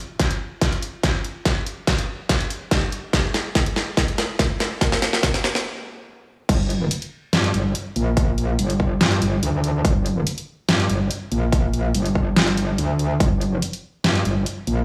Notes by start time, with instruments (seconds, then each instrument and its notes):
0.20 kick, snare, closed hi-hat
0.31 closed hi-hat
0.61 kick, snare, closed hi-hat
0.72 closed hi-hat
0.82 closed hi-hat
1.03 kick, snare, closed hi-hat
1.24 closed hi-hat
1.45 kick, snare, closed hi-hat
1.66 closed hi-hat
1.87 kick, snare, closed hi-hat
1.98 closed hi-hat
2.29 kick, snare, closed hi-hat
2.40 closed hi-hat
2.50 closed hi-hat
2.71 kick, snare, closed hi-hat
2.92 closed hi-hat
3.13 kick, snare, closed hi-hat
3.34 snare, closed hi-hat
3.55 kick, snare, closed hi-hat
3.66 closed hi-hat
3.76 snare
3.97 kick, snare, closed hi-hat
4.08 closed hi-hat
4.18 snare, closed hi-hat
4.39 kick, snare, closed hi-hat
4.60 snare, closed hi-hat
4.81 kick, snare, closed hi-hat
4.92 snare
5.02 snare, closed hi-hat
5.13 snare
5.23 kick, snare, closed hi-hat
5.34 snare, closed hi-hat
5.44 snare
5.55 snare
6.49 wobble bass G1, kick, closed hi-hat, crash
6.70 closed hi-hat
6.91 closed hi-hat
7.02 closed hi-hat
7.33 wobble bass G2, snare, closed hi-hat
7.44 closed hi-hat
7.54 wobble bass G1, closed hi-hat
7.75 closed hi-hat
7.96 wobble bass A#1, closed hi-hat
8.17 kick, closed hi-hat
8.38 closed hi-hat
8.59 wobble bass G1, closed hi-hat
8.70 closed hi-hat
8.80 kick
9.01 wobble bass G2, snare, closed hi-hat
9.12 closed hi-hat
9.22 wobble bass G1, closed hi-hat
9.43 wobble bass D2, closed hi-hat
9.64 closed hi-hat
9.85 wobble bass G1, kick, closed hi-hat
10.06 closed hi-hat
10.27 closed hi-hat
10.38 closed hi-hat
10.69 wobble bass G2, snare, closed hi-hat
10.80 closed hi-hat
10.90 wobble bass G1, closed hi-hat
11.11 closed hi-hat
11.32 wobble bass A#1, closed hi-hat
11.52 kick, closed hi-hat
11.74 closed hi-hat
11.94 wobble bass G1, closed hi-hat
12.06 closed hi-hat
12.15 kick
12.36 wobble bass G1, snare, closed hi-hat
12.48 closed hi-hat
12.57 closed hi-hat
12.78 wobble bass D2, closed hi-hat
12.99 closed hi-hat
13.20 wobble bass G1, kick, closed hi-hat
13.41 closed hi-hat
13.62 closed hi-hat
13.73 closed hi-hat
14.04 wobble bass G2, snare, closed hi-hat
14.15 closed hi-hat
14.25 wobble bass G1, closed hi-hat
14.46 closed hi-hat
14.67 wobble bass A#1, closed hi-hat